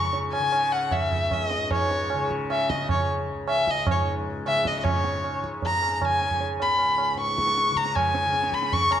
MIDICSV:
0, 0, Header, 1, 4, 480
1, 0, Start_track
1, 0, Tempo, 393959
1, 162, Time_signature, 4, 2, 24, 8
1, 5441, Tempo, 386349
1, 11074, End_track
2, 0, Start_track
2, 0, Title_t, "Violin"
2, 0, Program_c, 0, 40
2, 0, Note_on_c, 0, 85, 83
2, 163, Note_off_c, 0, 85, 0
2, 396, Note_on_c, 0, 80, 89
2, 877, Note_on_c, 0, 78, 76
2, 895, Note_off_c, 0, 80, 0
2, 1126, Note_on_c, 0, 76, 85
2, 1144, Note_off_c, 0, 78, 0
2, 1625, Note_off_c, 0, 76, 0
2, 1625, Note_on_c, 0, 76, 83
2, 1759, Note_off_c, 0, 76, 0
2, 1759, Note_on_c, 0, 75, 83
2, 2099, Note_off_c, 0, 75, 0
2, 2109, Note_on_c, 0, 73, 85
2, 2772, Note_off_c, 0, 73, 0
2, 3057, Note_on_c, 0, 76, 83
2, 3282, Note_on_c, 0, 75, 67
2, 3300, Note_off_c, 0, 76, 0
2, 3524, Note_off_c, 0, 75, 0
2, 3531, Note_on_c, 0, 73, 70
2, 3754, Note_off_c, 0, 73, 0
2, 4256, Note_on_c, 0, 76, 90
2, 4511, Note_on_c, 0, 75, 86
2, 4529, Note_off_c, 0, 76, 0
2, 4738, Note_off_c, 0, 75, 0
2, 4761, Note_on_c, 0, 73, 63
2, 4966, Note_off_c, 0, 73, 0
2, 5452, Note_on_c, 0, 76, 101
2, 5698, Note_on_c, 0, 75, 83
2, 5717, Note_off_c, 0, 76, 0
2, 5834, Note_off_c, 0, 75, 0
2, 5842, Note_on_c, 0, 75, 58
2, 5906, Note_on_c, 0, 73, 78
2, 5924, Note_off_c, 0, 75, 0
2, 6641, Note_off_c, 0, 73, 0
2, 6915, Note_on_c, 0, 82, 102
2, 7297, Note_off_c, 0, 82, 0
2, 7297, Note_on_c, 0, 82, 57
2, 7404, Note_on_c, 0, 80, 92
2, 7423, Note_off_c, 0, 82, 0
2, 7870, Note_off_c, 0, 80, 0
2, 8116, Note_on_c, 0, 83, 84
2, 8776, Note_off_c, 0, 83, 0
2, 8838, Note_on_c, 0, 85, 100
2, 9544, Note_on_c, 0, 82, 89
2, 9563, Note_off_c, 0, 85, 0
2, 9776, Note_on_c, 0, 80, 94
2, 9795, Note_off_c, 0, 82, 0
2, 10502, Note_on_c, 0, 83, 82
2, 10520, Note_off_c, 0, 80, 0
2, 10744, Note_on_c, 0, 85, 106
2, 10762, Note_off_c, 0, 83, 0
2, 10974, Note_on_c, 0, 82, 85
2, 10992, Note_off_c, 0, 85, 0
2, 11074, Note_off_c, 0, 82, 0
2, 11074, End_track
3, 0, Start_track
3, 0, Title_t, "Tanpura"
3, 0, Program_c, 1, 104
3, 0, Note_on_c, 1, 37, 52
3, 0, Note_on_c, 1, 44, 58
3, 0, Note_on_c, 1, 49, 56
3, 475, Note_off_c, 1, 49, 0
3, 475, Note_on_c, 1, 49, 61
3, 1199, Note_off_c, 1, 37, 0
3, 1204, Note_on_c, 1, 37, 62
3, 1918, Note_off_c, 1, 44, 0
3, 1923, Note_on_c, 1, 44, 60
3, 2601, Note_off_c, 1, 49, 0
3, 2601, Note_on_c, 1, 49, 64
3, 3320, Note_off_c, 1, 49, 0
3, 3320, Note_on_c, 1, 49, 52
3, 4038, Note_off_c, 1, 37, 0
3, 4043, Note_on_c, 1, 37, 59
3, 4737, Note_off_c, 1, 44, 0
3, 4742, Note_on_c, 1, 44, 60
3, 5440, Note_off_c, 1, 49, 0
3, 5440, Note_on_c, 1, 49, 57
3, 5927, Note_off_c, 1, 44, 0
3, 5927, Note_on_c, 1, 44, 55
3, 6651, Note_off_c, 1, 49, 0
3, 6651, Note_on_c, 1, 49, 48
3, 7354, Note_off_c, 1, 49, 0
3, 7354, Note_on_c, 1, 49, 52
3, 8043, Note_off_c, 1, 37, 0
3, 8048, Note_on_c, 1, 37, 57
3, 8766, Note_off_c, 1, 44, 0
3, 8766, Note_on_c, 1, 44, 57
3, 9452, Note_off_c, 1, 49, 0
3, 9457, Note_on_c, 1, 49, 60
3, 10151, Note_off_c, 1, 49, 0
3, 10151, Note_on_c, 1, 49, 67
3, 10854, Note_off_c, 1, 37, 0
3, 10859, Note_on_c, 1, 37, 58
3, 11074, Note_off_c, 1, 37, 0
3, 11074, Note_off_c, 1, 44, 0
3, 11074, Note_off_c, 1, 49, 0
3, 11074, End_track
4, 0, Start_track
4, 0, Title_t, "Tabla"
4, 160, Note_on_c, 9, 63, 75
4, 282, Note_off_c, 9, 63, 0
4, 405, Note_on_c, 9, 60, 55
4, 527, Note_off_c, 9, 60, 0
4, 637, Note_on_c, 9, 60, 61
4, 759, Note_off_c, 9, 60, 0
4, 883, Note_on_c, 9, 60, 58
4, 1005, Note_off_c, 9, 60, 0
4, 1113, Note_on_c, 9, 60, 72
4, 1113, Note_on_c, 9, 64, 64
4, 1235, Note_off_c, 9, 60, 0
4, 1235, Note_off_c, 9, 64, 0
4, 1359, Note_on_c, 9, 64, 49
4, 1481, Note_off_c, 9, 64, 0
4, 1599, Note_on_c, 9, 60, 70
4, 1599, Note_on_c, 9, 64, 63
4, 1721, Note_off_c, 9, 60, 0
4, 1721, Note_off_c, 9, 64, 0
4, 1836, Note_on_c, 9, 62, 58
4, 1958, Note_off_c, 9, 62, 0
4, 2080, Note_on_c, 9, 60, 90
4, 2080, Note_on_c, 9, 64, 77
4, 2202, Note_off_c, 9, 60, 0
4, 2202, Note_off_c, 9, 64, 0
4, 2326, Note_on_c, 9, 62, 74
4, 2448, Note_off_c, 9, 62, 0
4, 2559, Note_on_c, 9, 60, 65
4, 2681, Note_off_c, 9, 60, 0
4, 2813, Note_on_c, 9, 37, 59
4, 2935, Note_off_c, 9, 37, 0
4, 3049, Note_on_c, 9, 60, 70
4, 3171, Note_off_c, 9, 60, 0
4, 3288, Note_on_c, 9, 37, 74
4, 3410, Note_off_c, 9, 37, 0
4, 3522, Note_on_c, 9, 60, 89
4, 3522, Note_on_c, 9, 64, 78
4, 3644, Note_off_c, 9, 60, 0
4, 3644, Note_off_c, 9, 64, 0
4, 4234, Note_on_c, 9, 60, 74
4, 4356, Note_off_c, 9, 60, 0
4, 4478, Note_on_c, 9, 37, 65
4, 4600, Note_off_c, 9, 37, 0
4, 4710, Note_on_c, 9, 60, 84
4, 4710, Note_on_c, 9, 64, 92
4, 4832, Note_off_c, 9, 60, 0
4, 4832, Note_off_c, 9, 64, 0
4, 5435, Note_on_c, 9, 60, 72
4, 5559, Note_off_c, 9, 60, 0
4, 5674, Note_on_c, 9, 37, 74
4, 5798, Note_off_c, 9, 37, 0
4, 5914, Note_on_c, 9, 60, 94
4, 5914, Note_on_c, 9, 64, 85
4, 6038, Note_off_c, 9, 60, 0
4, 6038, Note_off_c, 9, 64, 0
4, 6157, Note_on_c, 9, 62, 76
4, 6281, Note_off_c, 9, 62, 0
4, 6404, Note_on_c, 9, 60, 67
4, 6528, Note_off_c, 9, 60, 0
4, 6649, Note_on_c, 9, 37, 53
4, 6773, Note_off_c, 9, 37, 0
4, 6878, Note_on_c, 9, 63, 72
4, 6878, Note_on_c, 9, 64, 67
4, 7002, Note_off_c, 9, 63, 0
4, 7002, Note_off_c, 9, 64, 0
4, 7125, Note_on_c, 9, 60, 57
4, 7249, Note_off_c, 9, 60, 0
4, 7366, Note_on_c, 9, 60, 67
4, 7366, Note_on_c, 9, 64, 62
4, 7490, Note_off_c, 9, 60, 0
4, 7490, Note_off_c, 9, 64, 0
4, 7614, Note_on_c, 9, 62, 58
4, 7733, Note_on_c, 9, 64, 51
4, 7738, Note_off_c, 9, 62, 0
4, 7852, Note_on_c, 9, 63, 71
4, 7857, Note_off_c, 9, 64, 0
4, 7976, Note_off_c, 9, 63, 0
4, 8093, Note_on_c, 9, 60, 52
4, 8217, Note_off_c, 9, 60, 0
4, 8325, Note_on_c, 9, 60, 63
4, 8449, Note_off_c, 9, 60, 0
4, 8566, Note_on_c, 9, 60, 57
4, 8690, Note_off_c, 9, 60, 0
4, 8806, Note_on_c, 9, 62, 68
4, 8930, Note_off_c, 9, 62, 0
4, 8942, Note_on_c, 9, 62, 58
4, 9066, Note_off_c, 9, 62, 0
4, 9066, Note_on_c, 9, 37, 56
4, 9177, Note_on_c, 9, 62, 58
4, 9190, Note_off_c, 9, 37, 0
4, 9301, Note_off_c, 9, 62, 0
4, 9305, Note_on_c, 9, 62, 76
4, 9418, Note_off_c, 9, 62, 0
4, 9418, Note_on_c, 9, 62, 58
4, 9532, Note_on_c, 9, 37, 54
4, 9542, Note_off_c, 9, 62, 0
4, 9649, Note_on_c, 9, 62, 55
4, 9657, Note_off_c, 9, 37, 0
4, 9773, Note_off_c, 9, 62, 0
4, 9784, Note_on_c, 9, 60, 89
4, 9784, Note_on_c, 9, 64, 78
4, 9908, Note_off_c, 9, 60, 0
4, 9908, Note_off_c, 9, 64, 0
4, 10013, Note_on_c, 9, 62, 76
4, 10137, Note_off_c, 9, 62, 0
4, 10250, Note_on_c, 9, 62, 63
4, 10370, Note_off_c, 9, 62, 0
4, 10370, Note_on_c, 9, 62, 61
4, 10481, Note_on_c, 9, 37, 55
4, 10494, Note_off_c, 9, 62, 0
4, 10605, Note_off_c, 9, 37, 0
4, 10610, Note_on_c, 9, 62, 62
4, 10733, Note_on_c, 9, 63, 69
4, 10733, Note_on_c, 9, 64, 65
4, 10734, Note_off_c, 9, 62, 0
4, 10857, Note_off_c, 9, 63, 0
4, 10857, Note_off_c, 9, 64, 0
4, 10961, Note_on_c, 9, 60, 59
4, 11074, Note_off_c, 9, 60, 0
4, 11074, End_track
0, 0, End_of_file